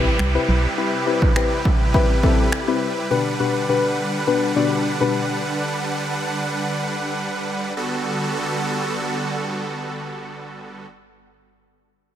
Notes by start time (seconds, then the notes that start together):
Already playing: C3 G3 C4 E4 G4 B4, downlifter
0.19 C2, finger snap
0.35 C4 E4 G4 B4
0.49 B1
0.77 C4 E4 G4 B4
1.06 C4 E4 G4 B4
1.22 kick
1.36 C4 E4 G4 B4, finger snap
1.65 kick
1.94 C4 E4 G4 B4, kick
2.23 C4 E4 G4 A4, kick
2.52 finger snap
2.68 C4 E4 G4 B4
3.11 B2 D3 D4 F#4 G4 B4 F#5
3.40 B2 D4 F#4 G4 B4
3.69 B2 D4 F#4 G4 B4
4.27 B2 D4 F#4 G4 B4
4.56 B2 D4 F#4 G4 D5
5.00 B2 D4 F#4 G4 B4
7.77 D3 G3 B3 F#4 A4